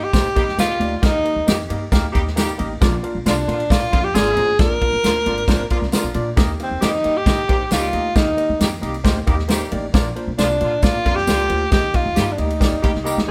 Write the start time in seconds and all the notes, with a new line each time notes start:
0.04 G4
0.13 A#3 D#4 G4 A#4 C5, kick, snare, ride, tambourine
0.24 muted upright bass stroke
0.35 F2 D#3 G3 A#3 D#4 G4 A#4 D#5, kick, ride
0.48 snare
0.57 C#2 D#3 G3 A#3 D#4 F4 G4 A#4 D#5, snare, ride, tambourine
0.80 D2 A#3 D#4 G4 A#4 D5, ride
0.98 F4
1.02 D#2 D#3 A#3 D#4 G4 A#4 F5, kick, snare, ride, tambourine
1.24 A#3 D#4 G4 A#4 D#5, ride
1.36 D#2
1.47 F2 D#3 G3 A#3 D#4 G4 A#4 D#5, snare, ride, tambourine
1.67 G2 D#3 G3 A#3 D#4 G4 A#4 D#5, ride
1.91 D2 A#3 D#4 G4 A#4 F5, kick, snare, ride, tambourine
2.12 D#2 D#3 G3 A#3 D#4 G4 A#4 D#5, kick, ride
2.27 snare
2.36 D#3 G3 A#3 D#4 G4 A#4 D#5, snare, ride, tambourine
2.49 ride
2.58 A1 A#3 D#4 G4 A#4 D#5, ride
2.81 A#1 A#2 A#3 D4 F4 A#4 D5, kick, snare, ride, tambourine
3.03 A#3 D4 F4 A#4 F5, ride
3.15 A#1
3.25 C2 D3 F3 A#3 D4 F4 A#4 D5, snare, ride, tambourine
3.47 A#2 D3 F3 A#3 D4 F4 A#4 F5, ride
3.60 ride
3.70 A#2 A#3 D4 F4 A#4 D5, kick, snare, ride, tambourine
3.91 F2 D3 F3 A#3 D4 F4 A#4 F5, kick, ride
4.04 G4
4.13 G#1 D3 F3 A#3 D4 F4 G#4 A#4 D5, snare, ride, tambourine
4.27 ride
4.37 A1 A#3 D4 F4 A#4 C5, ride
4.59 A#1 A#2 A#3 D4 F4 A#4 D5, kick, snare, ride, tambourine
4.81 A#3 D4 F4 A#4 F5, kick, ride
4.93 A#1
5.03 D2 D3 F3 A#3 D4 F4 A#4 C5, snare, ride, tambourine
5.25 G#1 D3 F3 A#3 D4 F4 A#4 D5, ride
5.38 ride
5.48 A#1 A#3 D4 F4 A#4 C5, kick, snare, ride, tambourine
5.60 A#1
5.70 D3 F3 A#3 D4 F4 A#4 D5, kick, ride
5.82 C2, snare
5.92 D3 F3 A#3 D4 F4 A#4 D5, muted upright bass stroke, snare, ride, tambourine
6.04 A#1, ride
6.14 A#2 A#3 D4 F4 A#4 D5, ride
6.36 D#2 D#3 A#3 D#4 G4 A#4 D#5, kick, snare, ride, tambourine
6.59 A#3 C4 D#4 G4 A#4 F5, ride
6.71 D#2
6.82 F2 D#3 G3 A#3 D#4 G4 A#4 C5, snare, ride, tambourine
7.04 G2 D#3 G3 A#3 D#4 G4 A#4 D#5, ride
7.17 G4
7.26 D#3 A#3 D#4 G4 A#4 D#5, kick, snare, ride, tambourine
7.48 A#1 D#3 G3 A#3 D#4 G4 A#4 C5, kick, ride
7.65 G4
7.71 C#2 D#3 G3 A#3 D#4 F4 G4 A#4 D#5, snare, ride, tambourine
7.83 ride
7.93 D2 A#3 D#4 G4 A#4 D#5, ride
8.15 D#2 D#3 A#3 D#4 G4 A#4 F5, kick, snare, ride, tambourine
8.37 A#3 D#4 G4 A#4 D#5, ride
8.49 D#2
8.59 F2 D#3 G3 A#3 D#4 G4 A#4 D#5, snare, ride, tambourine
8.81 C2 D#3 G3 A#3 D#4 G4 A#4 D#5, ride
8.94 ride
9.04 D2 A#3 D#4 G4 A#4 C5, kick, snare, ride, tambourine
9.27 D#2 D#3 G3 A#3 D#4 G4 A#4 D#5, kick, ride
9.39 snare
9.48 D#3 G3 A#3 D#4 G4 A#4 C5, snare, ride, tambourine
9.60 ride
9.71 A1 A#3 D#4 G4 A#4 D5, ride
9.94 A#1 A#2 A#3 D4 F4 A#4 D5, kick, snare, ride, tambourine
10.15 A#3 D4 F4 A#4 C5, ride
10.28 A#1
10.38 C2 D3 F3 A#3 D4 F4 A#4 D5, snare, ride, tambourine
10.60 A#2 D3 F3 A#3 D4 F4 A#4 D5, ride
10.82 A#2 A#3 D4 F4 A#4 D5, kick, snare, ride, tambourine
11.04 F2 D3 F3 A#3 D4 F4 A#4 D5, kick, ride
11.16 G4, snare
11.27 C#2 D3 F3 A#3 D4 F4 A#4 D5, snare, ride, tambourine
11.39 ride
11.49 D2 A#3 D4 F4 A#4 C5, ride
11.71 D#2 D#3 A#3 D#4 G4 A#4 D#5, kick, snare, ride, tambourine
11.93 A#3 D#4 F4 G4 A#4 D#5, kick, ride
12.05 D#2
12.16 G2 D#3 G3 A#3 D#4 G4 A#4 D#5, snare, ride, tambourine
12.32 D4
12.37 D2 D#3 G3 A#3 D#4 G4 A#4 D#5, ride
12.50 ride
12.60 A#3 D#4 G4 A#4 D5, kick, snare, ride, tambourine
12.72 D#2
12.82 D2 D#3 G3 A#3 D#4 G4 A#4 F5, kick, ride
12.95 C2, snare
13.04 D#3 G3 A#3 D#4 G4 A#4 D#5, tambourine
13.18 D2, snare
13.28 A#3 D#4